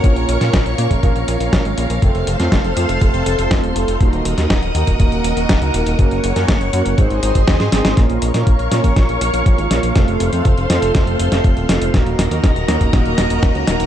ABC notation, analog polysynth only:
X:1
M:4/4
L:1/16
Q:1/4=121
K:Bbm
V:1 name="Analog polysynth"
[B,DFB]3 [B,DFB]2 z [B,DFB]2 [B,DFB]3 [B,DFB]3 [B,DFB]2 | [=A,CF=A]3 [A,CFA]2 z [A,CFA]2 [A,CFA]3 [A,CFA]3 [A,CFA]2 | [B,EGB]3 [B,EGB]2 z [B,EGB]2 [B,EGB]3 [B,EGB]3 [B,EGB]2 | [B,DGB]3 [B,DGB]2 z [B,DGB]2 [CEAc]2 [CEAc]2 z [CEAc] [CEAc]2 |
[B,DFB]3 [B,DFB]2 z [B,DFB]2 [B,DFB]3 [B,DFB]3 [B,DFB]2 | [=A,CF=A]3 [A,CFA]2 z [A,CFA]2 [A,CFA]3 [A,CFA]3 [A,CFA]2 | [B,EGB]3 [B,EGB]2 z [B,EGB]2 [B,EGB]3 [B,EGB]3 [B,EGB]2 |]